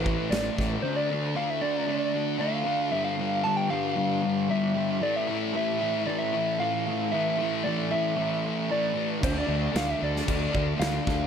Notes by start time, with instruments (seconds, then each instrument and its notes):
Already playing: fingered electric bass A1, distorted electric guitar A2, soft synth lead B4
0.03 distorted electric guitar E3 A3, kick
0.30 fingered electric bass A1, distorted electric guitar A2 E3 A3, soft synth lead D5, snare, crash
0.58 fingered electric bass A1, distorted electric guitar E3 A3, kick, snare
0.82 distorted electric guitar D3 A3 D4, soft synth lead C5
0.96 soft synth lead D5
1.11 distorted electric guitar A3 D4
1.35 distorted electric guitar D3 A3 D4, soft synth lead F5
1.50 soft synth lead E5
1.61 distorted electric guitar A3 D4, soft synth lead D5
1.87 distorted electric guitar D3 A3 D4
2.13 distorted electric guitar A3 D4
2.38 distorted electric guitar D3 A3 D4, soft synth lead F5
2.64 distorted electric guitar A3 D4
2.90 distorted electric guitar G2 D3 G3, soft synth lead E5
3.04 soft synth lead F5
3.17 distorted electric guitar D3 G3
3.44 distorted electric guitar G2 D3 G3, soft synth lead A5
3.57 soft synth lead G5
3.70 distorted electric guitar D3 G3, soft synth lead F5
3.96 distorted electric guitar G2 D3 G3
4.22 distorted electric guitar D3 G3
4.49 distorted electric guitar G2 D3 G3, soft synth lead E5
4.75 distorted electric guitar D3 G3
5.00 distorted electric guitar A2 E3 A3, soft synth lead D5
5.16 soft synth lead E5
5.27 distorted electric guitar E3 A3
5.53 distorted electric guitar A2 E3 A3, soft synth lead E5
5.79 distorted electric guitar E3 A3, soft synth lead E5
6.07 distorted electric guitar A2 E3 A3, soft synth lead D5
6.18 soft synth lead E5
6.32 distorted electric guitar E3 A3
6.59 distorted electric guitar A2 E3 A3, soft synth lead F5
6.86 distorted electric guitar E3 A3
7.12 distorted electric guitar A2 E3 A3, soft synth lead E5
7.38 distorted electric guitar E3 A3
7.64 distorted electric guitar A2 E3, soft synth lead D5
7.68 distorted electric guitar A3
7.91 distorted electric guitar E3 A3, soft synth lead E5
8.17 distorted electric guitar A2 E3 A3
8.45 distorted electric guitar E3 A3
8.69 distorted electric guitar A2 E3 A3, soft synth lead D5
8.94 distorted electric guitar E3 A3
9.21 fingered electric bass D2, distorted electric guitar D3 A3 D4, soft synth lead C5, kick, crash
9.38 soft synth lead D5
9.47 fingered electric bass D2, distorted electric guitar A3 D4
9.72 fingered electric bass D2, distorted electric guitar D3 A3 D4, crash
9.76 soft synth lead F5, snare
9.91 soft synth lead E5
9.98 distorted electric guitar A3 D4
10.02 fingered electric bass D2, soft synth lead D5
10.16 snare
10.25 fingered electric bass D2, distorted electric guitar D3 A3 D4, kick, crash
10.51 fingered electric bass D2, distorted electric guitar A3 D4, kick
10.78 fingered electric bass D2, distorted electric guitar D3 A3 D4, soft synth lead F5, crash
10.82 snare
11.05 fingered electric bass D2, distorted electric guitar A3 D4, kick, snare